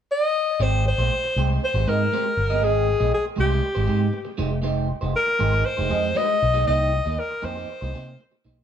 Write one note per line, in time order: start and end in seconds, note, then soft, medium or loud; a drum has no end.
0.11 0.64 D#5 loud
0.60 0.91 G#1 loud
0.60 0.83 G#3 medium
0.60 0.83 C4 medium
0.60 0.83 G4 medium
0.60 0.84 C5 medium
0.60 0.86 C5 medium
0.85 1.58 C5 loud
0.85 muted clean electric guitar stroke soft
0.98 1.08 A#1 medium
0.98 1.11 G#3 soft
0.98 1.11 C4 medium
0.98 1.11 G4 medium
0.98 1.12 C5 medium
1.12 muted clean electric guitar stroke soft
1.24 muted clean electric guitar stroke soft
1.36 1.57 C2 medium
1.36 1.50 G#3 medium
1.36 1.49 C4 medium
1.36 1.49 G4 medium
1.36 1.49 C5 medium
1.50 1.62 G#3 soft
1.50 1.62 C4 medium
1.50 1.62 G4 medium
1.50 1.63 C5 medium
1.63 1.91 C5 medium
1.63 muted clean electric guitar stroke soft
1.74 1.84 G#1 loud
1.74 1.86 G#3 medium
1.74 1.86 C4 soft
1.74 1.86 G4 medium
1.74 1.88 C5 medium
1.87 2.08 G#2 medium
1.87 2.04 G#3 medium
1.87 2.00 C4 medium
1.87 1.99 G4 medium
1.87 2.65 A#4 medium
1.87 1.99 D#5 medium
2.00 muted clean electric guitar stroke soft
2.12 2.30 G#3 medium
2.12 2.25 C4 medium
2.12 2.25 G4 medium
2.12 2.24 C5 medium
2.25 muted clean electric guitar stroke soft
2.37 2.62 G1 medium
2.37 muted clean electric guitar stroke soft
2.50 2.61 G#3 medium
2.50 2.61 C4 medium
2.50 2.61 G4 medium
2.50 2.62 D#5 medium
2.62 2.93 G#1 loud
2.62 2.86 G#3 medium
2.62 2.86 C4 medium
2.62 2.86 G4 medium
2.62 3.13 G#4 medium
2.62 2.86 D#5 medium
2.88 muted clean electric guitar stroke soft
3.00 3.11 A#1 medium
3.00 3.11 G#3 medium
3.00 3.12 C4 medium
3.00 3.12 G4 medium
3.00 3.13 D#5 medium
3.12 3.25 G#4 medium
3.12 muted clean electric guitar stroke soft
3.24 muted clean electric guitar stroke soft
3.36 3.59 C2 medium
3.36 3.50 G#3 medium
3.36 3.50 C4 medium
3.36 3.49 G4 medium
3.36 4.36 G4 medium
3.36 3.49 C5 medium
3.50 3.61 G#3 soft
3.50 3.61 C4 medium
3.50 3.62 G4 medium
3.50 3.63 C5 medium
3.63 muted clean electric guitar stroke soft
3.75 3.87 G#1 medium
3.75 3.85 G#3 medium
3.75 3.85 C4 medium
3.75 3.86 G4 medium
3.75 3.87 C5 medium
3.86 4.09 G#2 medium
3.86 4.05 G#3 medium
3.86 4.00 C4 medium
3.86 3.99 G4 medium
3.86 3.99 C5 medium
4.00 muted clean electric guitar stroke soft
4.13 muted clean electric guitar stroke soft
4.25 muted clean electric guitar stroke medium
4.38 4.91 F1 medium
4.38 4.56 G#3 medium
4.38 4.50 D#4 medium
4.38 4.50 G4 medium
4.38 4.49 C5 loud
4.51 muted clean electric guitar stroke soft
4.62 4.87 G#3 medium
4.62 4.87 D#4 medium
4.62 4.87 G4 medium
4.62 4.88 C5 loud
4.89 muted clean electric guitar stroke soft
5.01 5.13 F1 medium
5.01 5.11 G#3 medium
5.01 5.12 D#4 medium
5.01 5.12 G4 medium
5.01 5.12 C5 medium
5.12 5.67 A#4 loud
5.12 muted clean electric guitar stroke soft
5.26 muted clean electric guitar stroke soft
5.39 5.62 G#1 medium
5.39 5.52 G#3 medium
5.39 5.52 D#4 medium
5.39 5.52 G4 medium
5.39 5.51 C5 medium
5.52 5.63 G#3 medium
5.52 5.64 D#4 medium
5.52 5.64 G4 medium
5.52 5.64 C5 medium
5.65 6.18 C5 loud
5.65 muted clean electric guitar stroke soft
5.77 5.89 F1 medium
5.77 5.88 G#3 medium
5.77 5.89 D#4 medium
5.77 5.89 G4 medium
5.77 5.90 C5 medium
5.89 6.12 F2 medium
5.89 6.08 G#3 medium
5.89 6.03 D#4 medium
5.89 6.02 G4 medium
5.89 6.02 D#5 medium
6.03 muted clean electric guitar stroke medium
6.15 6.36 G#3 medium
6.15 6.28 D#4 medium
6.15 6.27 G4 medium
6.15 6.27 C5 medium
6.15 6.66 D#5 loud
6.28 muted clean electric guitar stroke soft
6.41 6.63 B1 medium
6.41 muted clean electric guitar stroke soft
6.54 6.67 G#3 medium
6.54 6.67 D#4 medium
6.54 6.67 G4 medium
6.54 6.67 D#5 medium
6.67 6.99 C2 loud
6.67 6.91 A#3 medium
6.67 6.91 D#4 medium
6.67 6.91 G4 medium
6.67 7.21 D#5 loud
6.67 6.91 D#5 medium
6.93 muted clean electric guitar stroke soft
7.05 7.16 D#2 medium
7.05 7.17 A#3 medium
7.05 7.17 D#4 medium
7.05 7.18 G4 medium
7.05 7.18 D#5 medium
7.18 7.46 A#4 medium
7.18 muted clean electric guitar stroke soft
7.31 muted clean electric guitar stroke soft
7.42 7.64 F2 medium
7.42 7.56 A#3 medium
7.42 7.56 D#4 medium
7.42 7.55 G4 medium
7.42 7.54 C5 medium
7.42 8.46 C5 medium
7.56 7.67 A#3 soft
7.56 7.68 D#4 medium
7.56 7.68 G4 medium
7.56 7.69 C5 medium
7.69 muted clean electric guitar stroke soft
7.81 7.92 C2 medium
7.81 7.93 A#3 soft
7.81 7.93 D#4 soft
7.81 7.94 G4 soft
7.81 7.94 C5 soft
7.94 8.15 C3 medium
7.94 8.12 A#3 medium
7.94 8.07 D#4 medium
7.94 8.07 G4 medium
7.94 8.06 C5 medium
8.07 muted clean electric guitar stroke soft
8.20 muted clean electric guitar stroke soft
8.31 muted clean electric guitar stroke soft
8.45 8.64 B1 medium
8.45 8.63 A#3 medium
8.45 8.58 D#4 medium
8.45 8.57 G4 medium
8.45 8.57 C5 medium
8.58 muted clean electric guitar stroke soft